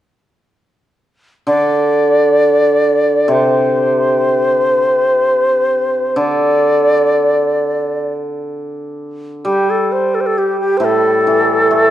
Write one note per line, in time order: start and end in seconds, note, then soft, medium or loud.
1.47 4.81 D3 soft
1.47 3.33 D5 medium
3.28 6.17 C3 soft
3.28 6.19 C5 medium
6.16 9.42 D3 soft
6.16 8.13 D5 medium
9.45 11.90 G3 soft
9.45 9.72 G4 medium
9.70 9.94 A4 medium
9.92 10.16 C5 medium
10.15 10.22 A4 medium
10.21 10.28 C5 medium
10.26 10.40 A4 medium
10.38 10.60 G4 medium
10.60 10.79 G4 medium
10.77 11.90 A2 medium
10.77 10.86 C5 medium
10.84 11.90 A4 medium
11.27 11.90 E3 soft
11.71 11.90 A3 soft